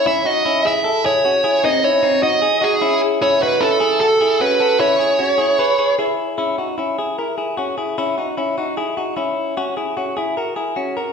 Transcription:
<<
  \new Staff \with { instrumentName = "Lead electric guitar" } { \time 4/4 \key cis \minor \tempo 4 = 151 e''8 dis''4 e''4 cis''4. | dis''8 cis''4 dis''4 gis'4 r8 | cis''8 b'8 a'4 a'4 b'4 | cis''2. r4 |
\key cis \dorian r1 | r1 | r1 | }
  \new Staff \with { instrumentName = "Clean electric guitar" } { \time 4/4 \key cis \minor <cis' e'>8 <dis' fis'>8 <cis' e'>8 <e' gis'>8 <e' a'>8 <e' gis'>8 <cis' fis'>8 <e' gis'>8 | <bis dis'>8 <cis' e'>8 <bis dis'>8 <dis' fis'>8 <dis' gis'>8 <dis' fis'>8 <cis' e'>4 | <cis' e'>8 <dis' fis'>8 <cis' e'>8 <e' gis'>8 <fis' a'>8 <e' gis'>8 <cis' fis'>8 <fis' a'>8 | <cis' e'>8 <e' gis'>8 <cis' fis'>8 <e' gis'>8 <gis' b'>8 <gis' b'>8 <e' gis'>4 |
\key cis \dorian <cis' e'>8 <dis' fis'>8 <cis' e'>8 <e' gis'>8 <e' ais'>8 <e' gis'>8 <cis' fis'>8 <e' gis'>8 | <cis' e'>8 <dis' fis'>8 <cis' e'>8 <dis' fis'>8 <e' gis'>8 <dis' fis'>8 <cis' e'>4 | <cis' fis'>8 <e' gis'>8 <cis' fis'>8 <e' gis'>8 <fis' ais'>8 <e' gis'>8 <cis' fis'>8 <fis' ais'>8 | }
>>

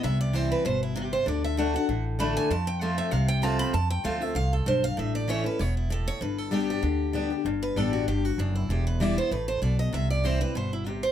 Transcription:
<<
  \new Staff \with { instrumentName = "Steel-string acoustic guitar" } { \time 4/4 \key g \major \tempo 4 = 194 e''8 d''8 c''8 b'8 c''8 e'8 g'8 c''8 | d''8 e''8 fis''8 fis''4 r8 b''8 aes''8 | a''8 g''8 f''8 e''8 f''8 g''8 a''8 b''8 | a''8 g''8 f''8 e''8 f''8 a'8 c''8 f''8 |
e''8 d''8 cis''8 b'8 cis''8 e'8 a'8 cis''8 | b'8 a'8 g'8 g'2~ g'16 r16 | r8 b'8 a'8 fis'8 g'8 fis'8 d'8 e'8 | g'8 b'8 d''8 c''8 b'8 c''8 d''8 ees''8 |
e''8 d''8 c''8 b'8 c''8 e'8 g'8 c''8 | }
  \new Staff \with { instrumentName = "Steel-string acoustic guitar" } { \time 4/4 \key g \major << { r4 <e g c' e'>4 r2 | r4 <d a d' fis'>8 <d' fis'>8 r4 <d a d' fis'>4 | r4 <f a c' f'>4 r4 <f a c' f'>4 | r4 <f a c' f'>8 <c' f'>8 r2 |
r4 <e a cis' e'>8 <cis' e'>8 r2 | r4 <g b d' g'>4 r4 <g b d' g'>8 <d' g'>8 | r4 <g b d' g'>4 r2 | r4 <e g b e'>8 <b e'>8 r2 |
r4 <e g c' e'>8 <c' e'>8 r2 | } \\ { c2 b,4 c4 | d2 a,2 | f,2 c2 | f,2 f,4 g,4 |
a,2 b,4 a,4 | g,2 d2 | g,2 g,4 fis,4 | e,2 a,4 b,4 |
c2 b,4 c4 | } >> }
  \new Staff \with { instrumentName = "Upright bass" } { \clef bass \time 4/4 \key g \major c,2 g,,2 | d,2 a,,2 | f,2 c,2 | f,4 d,4 c,4 b,,4 |
a,,2 e,,2 | g,,2 d,2 | g,,4 a,,4 g,,4 fis,,4 | e,,2 a,,4 b,,4 |
c,2 g,,2 | }
>>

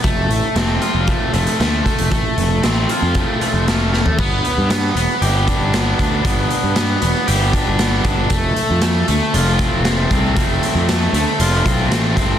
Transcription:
<<
  \new Staff \with { instrumentName = "Overdriven electric guitar" } { \time 4/4 \key g \mixolydian \tempo 4 = 116 a4 c'8 f'8 a8 a8 a8 a8 | a4 c'8 f'8 a8 a8 a8 a8 | b4 b8 b8 g'8 d'8 b8 d'8 | b4 b8 b8 g'8 d'8 b8 d'8 |
a4 a8 a8 f'8 c'8 a8 c'8 | a4 a8 a8 f'8 c'8 a8 c'8 | }
  \new Staff \with { instrumentName = "Picked electric bass" } { \clef bass \time 4/4 \key g \mixolydian f,,8 a,,16 r16 f,,8 r16 f,,8 r16 f,,16 r16 d,8 r16 f,,16 | a,,16 r16 f,,8 a,,8 r16 f,8 r8 f,,4~ f,,16 | g,,8 r16 g,8. e,,16 r16 g,,8. g,,8. d,8 | g,,8 r16 g,8. e,,16 r16 g,,8. g,,8. g,,8 |
f,,8 r16 f,8. d,16 r16 f,,8. f,,8. c,8 | f,,8 r16 f,8. d,16 r16 f,,8 b,,8 a,,8 g,,8 | }
  \new DrumStaff \with { instrumentName = "Drums" } \drummode { \time 4/4 <hh bd>8 hh8 <hh sn>8 hh8 <hh bd>8 hh16 hh16 <hh sn>8 <hh bd>16 hh16 | <hh bd>8 hh8 <hh sn>8 hh8 <hh bd>8 hh8 <hh sn>8 sn16 tomfh16 | <cymc bd>8 hh8 <hh sn>8 hh8 hh8 <hh bd>8 <hh sn>8 <hh bd>8 | <hh bd>8 hh8 <hh sn>8 hh8 hh8 <hh bd>8 <hh sn>8 <hh bd>8 |
<hh bd>8 hh8 <hh sn>8 hh8 hh8 <hh bd sn>8 <hh sn>8 <hh bd>8 | <hh bd>8 hh8 <hh sn>8 hh8 hh8 <hh bd>8 <hh sn>8 <hh bd>8 | }
>>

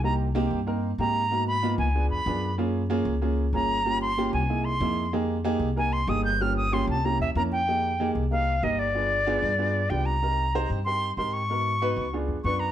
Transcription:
<<
  \new Staff \with { instrumentName = "Flute" } { \time 4/4 \key f \minor \tempo 4 = 188 bes''8 r2 r8 bes''4~ | bes''8 ces'''4 aes''4 ces'''4. | r2. bes''4~ | bes''8 c'''4 aes''4 c'''4. |
r2 aes''8 c'''8 ees'''8 g'''8 | f'''8 ees'''8 c'''8 a''8 bes''8 e''8 bes''8 g''8~ | g''4. r8 f''4 ees''8 d''8~ | d''2. g''8 bes''8~ |
bes''4. r8 c'''4 c'''8 des'''8~ | des'''2 r4 des'''8 bes''8 | }
  \new Staff \with { instrumentName = "Upright piano" } { \time 4/4 \key f \minor <bes c' ees' g'>8 r8 <bes c' ees' g'>8 r8 <bes c' ees' bes'>8 r8 <bes c' ees' g'>8 r8 | <bes ces' ees' ges'>8 r8 <bes ces' ees' f'>8 r8 <ces' d' f' aes'>8 r8 <ces' d' f' aes'>8 r8 | <bes des' f' aes'>8 r8 <bes des' f' aes'>8 r8 <bes des' f' aes'>8 r8 <bes des' f' aes'>8 r8 | <bes des' f' g'>8 r8 <bes des' f' g'>8 r8 <bes dis' e' gis'>8 r8 <bes dis' e' gis'>8 r8 |
<bes ees' g' aes'>8 r8 <bes ees' g' aes'>8 r8 <bes ees' g' bes'>8 r8 <bes ees' g' aes'>8 r8 | <bes des' f' g'>8 r8 <bes des' f' g'>8 r8 <bes des' e' g'>8 r8 <bes des' e' bes'>8 r8 | <bes ees' g' aes'>8 r8 <bes ees' g' aes'>8 r8 <bes ees' g' bes'>8 r8 <bes ees' g' bes'>8 r8 | <b d' f' aes'>8 r8 <b d' f' aes'>8 r8 <b d' f' aes'>8 r8 <b d' f' g'>8 r8 |
<c' ees' g' bes'>8 r8 <c' ees' g' c''>8 r8 <c' ees' g' bes'>8 r8 <c' ees' g' bes'>8 r8 | <ces' ees' ges' bes'>8 r8 <ces' ees' ges' ces''>8 r8 <ces' d' f' aes'>8 r8 <ces' d' f' ces''>8 r8 | }
  \new Staff \with { instrumentName = "Upright bass" } { \clef bass \time 4/4 \key f \minor c,4. g,4. aes,4~ | aes,4. des,4 f,8 ges,4~ | ges,4. des,4. g,,4~ | g,,4. c,4. f,4~ |
f,4. c,4. g,,4~ | g,,4. c,4 e,8 f,4~ | f,4. c,4. g,,4~ | g,,4. g,4. c,4~ |
c,4. g,4. aes,4~ | aes,4. des,4 f,8 ges,4 | }
>>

